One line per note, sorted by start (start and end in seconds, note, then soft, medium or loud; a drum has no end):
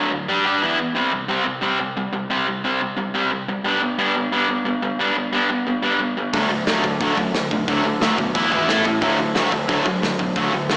0.00 0.10 D3 medium
0.00 0.11 F#3 loud
0.00 0.11 A3 loud
0.12 0.27 D3 medium
0.12 0.27 F#3 medium
0.28 0.44 G3 medium
0.28 0.45 D4 medium
0.28 0.45 G4 medium
0.45 0.61 G3 medium
0.45 0.61 D4 loud
0.45 0.62 G4 medium
0.62 0.77 E3 medium
0.62 0.77 B3 medium
0.62 0.79 E4 medium
0.78 0.94 E3 medium
0.78 0.94 B3 medium
0.95 1.11 C3 medium
0.95 1.11 G3 medium
0.95 1.12 C4 loud
1.12 1.27 C3 medium
1.12 1.28 G3 medium
1.28 1.44 C3 medium
1.28 1.44 G3 loud
1.28 1.45 C4 loud
1.45 1.60 C3 medium
1.45 1.61 G3 medium
1.61 1.78 C3 medium
1.61 1.79 G3 medium
1.61 1.79 C4 medium
1.80 1.95 C3 medium
1.80 1.95 G3 medium
1.97 2.11 C3 medium
1.97 2.12 G3 medium
2.13 2.28 C3 medium
2.13 2.29 G3 medium
2.30 2.46 C3 medium
2.30 2.46 G3 loud
2.30 2.47 C4 loud
2.48 2.62 C3 medium
2.48 2.63 G3 medium
2.64 2.80 C3 medium
2.64 2.80 G3 medium
2.64 2.80 C4 medium
2.81 2.95 C3 medium
2.81 2.96 G3 medium
2.97 3.12 C3 medium
2.97 3.13 G3 medium
3.14 3.30 C3 loud
3.14 3.30 G3 loud
3.14 3.30 C4 loud
3.31 3.46 C3 medium
3.31 3.47 G3 medium
3.48 3.63 C3 medium
3.48 3.63 G3 medium
3.64 3.80 G3 medium
3.64 3.81 B3 medium
3.64 3.81 D4 medium
3.82 3.97 G3 medium
3.82 3.97 B3 medium
3.98 4.14 G3 loud
3.98 4.15 B3 medium
3.98 4.15 D4 medium
4.16 4.31 G3 medium
4.16 4.31 B3 medium
4.32 4.47 G3 medium
4.32 4.48 B3 loud
4.32 4.48 D4 medium
4.49 4.64 G3 medium
4.49 4.64 B3 medium
4.65 4.81 G3 medium
4.65 4.81 B3 medium
4.82 4.97 G3 medium
4.82 4.98 B3 medium
4.99 5.15 G3 medium
4.99 5.15 B3 medium
4.99 5.16 D4 loud
5.16 5.31 G3 medium
5.16 5.31 B3 medium
5.33 5.48 G3 medium
5.33 5.49 B3 loud
5.33 5.49 D4 loud
5.50 5.65 G3 medium
5.50 5.65 B3 medium
5.67 5.81 G3 medium
5.67 5.82 B3 medium
5.82 5.99 G3 loud
5.82 5.99 B3 medium
5.82 5.99 D4 loud
6.00 6.15 G3 medium
6.00 6.15 B3 medium
6.17 6.32 G3 medium
6.17 6.32 B3 medium
6.34 6.46 D2 medium
6.34 6.49 D3 medium
6.34 6.50 F#3 medium
6.34 6.50 A3 medium
6.34 6.50 D4 medium
6.34 kick loud
6.34 open hi-hat medium
6.50 6.63 D2 medium
6.50 6.65 D3 medium
6.50 6.66 F#3 medium
6.50 6.66 A3 medium
6.67 6.79 D2 loud
6.67 6.83 D3 medium
6.67 6.83 F#3 medium
6.67 6.83 A3 loud
6.67 6.84 D4 loud
6.67 snare loud
6.67 open hi-hat soft
6.84 6.96 D2 medium
6.84 6.99 D3 medium
6.84 7.00 F#3 medium
6.84 6.99 A3 medium
6.84 kick medium
7.01 7.13 D2 medium
7.01 7.17 D3 medium
7.01 7.17 F#3 medium
7.01 7.17 A3 medium
7.01 7.17 D4 medium
7.01 kick loud
7.01 open hi-hat medium
7.17 7.30 F#2 medium
7.17 7.33 D3 medium
7.17 7.33 F#3 medium
7.17 7.33 A3 medium
7.17 kick medium
7.34 7.46 D2 medium
7.34 7.50 D3 medium
7.34 7.50 F#3 medium
7.34 7.50 A3 medium
7.34 snare loud
7.34 open hi-hat medium
7.51 7.64 B1 medium
7.51 7.67 D3 medium
7.51 7.67 F#3 medium
7.51 7.66 A3 medium
7.51 kick medium
7.68 7.80 D2 medium
7.68 7.84 D3 medium
7.68 7.84 F#3 loud
7.68 7.85 A3 loud
7.68 7.84 D4 medium
7.68 kick loud
7.68 open hi-hat medium
7.84 7.97 D2 medium
7.84 8.00 D3 medium
7.84 8.00 F#3 medium
7.84 8.00 A3 medium
8.01 8.13 D2 loud
8.01 8.17 D3 medium
8.01 8.17 F#3 loud
8.01 8.18 A3 loud
8.01 8.17 D4 loud
8.01 snare loud
8.01 open hi-hat medium
8.18 8.30 B2 medium
8.18 8.33 D3 medium
8.18 8.33 F#3 medium
8.18 8.34 A3 medium
8.18 kick medium
8.35 8.47 E1 medium
8.35 8.50 E3 medium
8.35 8.51 B3 medium
8.35 8.51 E4 loud
8.35 kick loud
8.35 open hi-hat medium
8.51 8.64 G#1 medium
8.51 8.67 E3 loud
8.51 8.68 B3 loud
8.51 8.67 E4 loud
8.51 kick medium
8.68 8.80 A1 medium
8.68 8.84 A3 medium
8.68 8.84 E4 medium
8.68 8.85 A4 loud
8.68 snare loud
8.68 open hi-hat medium
8.85 8.98 A1 loud
8.85 9.00 A3 medium
8.85 9.01 E4 medium
8.85 kick medium
9.01 9.14 D2 loud
9.01 9.17 D3 medium
9.01 9.18 F#3 medium
9.01 9.18 A3 loud
9.01 kick loud
9.01 open hi-hat medium
9.18 9.31 D2 medium
9.18 9.34 D3 medium
9.18 9.34 F#3 medium
9.35 9.48 D2 medium
9.35 9.51 D3 medium
9.35 9.51 F#3 medium
9.35 9.52 A3 loud
9.35 snare loud
9.35 open hi-hat medium
9.52 9.65 D2 medium
9.52 9.67 D3 medium
9.52 9.68 F#3 medium
9.52 kick medium
9.68 9.81 D2 medium
9.68 9.84 D3 medium
9.68 9.85 F#3 medium
9.68 9.85 A3 loud
9.68 kick loud
9.68 open hi-hat medium
9.86 9.98 F#2 loud
9.86 10.01 D3 medium
9.86 10.01 F#3 medium
9.86 kick medium
10.02 10.15 D2 medium
10.02 10.18 D3 medium
10.02 10.18 F#3 medium
10.02 snare loud
10.02 open hi-hat medium
10.19 10.32 B1 medium
10.19 10.35 D3 medium
10.19 10.35 F#3 medium
10.19 kick medium
10.36 10.48 D2 medium
10.36 10.52 D3 medium
10.36 10.52 F#3 medium
10.36 10.53 A3 loud
10.36 kick loud
10.36 open hi-hat medium
10.53 10.66 D2 medium
10.53 10.69 D3 medium
10.53 10.69 F#3 medium
10.69 10.77 D2 loud
10.69 10.77 D3 medium
10.69 10.77 F#3 loud
10.69 10.77 A3 loud
10.69 snare loud
10.69 open hi-hat medium